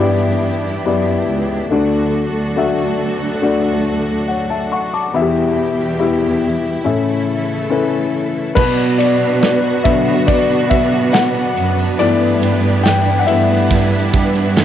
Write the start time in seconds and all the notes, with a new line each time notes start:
Already playing: G2 E3 B3 D4 E4 G4
0.00 B3 E4 G4 D5
0.85 F#2 B3 E4 G4 D5
1.28 C#2
1.71 D2 D3 F#3 A3 D4 F#4 A4 D5
2.35 D2
2.56 A3 D4 F#4 E5
3.42 A3 D4 F#4 D5
4.28 C#5 F#5
4.50 E5 A5
4.72 F#5 C#6
4.93 A5 D6
5.14 E2 B2 E3 G3 B3 E4 F#4 G4 E5
5.22 G4
5.78 E2
5.99 B3 E4 G4 E5
6.84 A2 C#3 E3 A3 C#4 E4 A4 E5
7.70 C#4 E4 A4 B4
8.55 B2 F#3 B3 D4 F#4 B4, kick, crash
8.78 D4
8.98 F#4 D5, ride
9.20 D4
9.41 F#3 D5, snare, ride
9.63 F#4
9.84 B2 D3 F#3 B3 E5, kick, ride
10.06 D4
10.27 B2 F#4 D5, kick, ride
10.50 D4
10.70 F#4 E5, kick, ride
10.92 D4
11.13 F#3 F#5, snare, ride
11.35 F#4
11.56 F#2 B3, ride
11.78 D4
11.99 G2 E3 G3 A3 B3 E4 G4 D5, ride
12.21 B3
12.42 G4, ride
12.64 B3
12.84 E3 G5, snare, ride
13.06 G4
13.19 F#5
13.27 G2 E3 G3 A3 B3 E5, ride
13.50 B3
13.70 G2 G4, kick, ride
13.92 B3
14.13 G2 G4, kick, ride
14.35 B3, ride
14.57 E3, snare, ride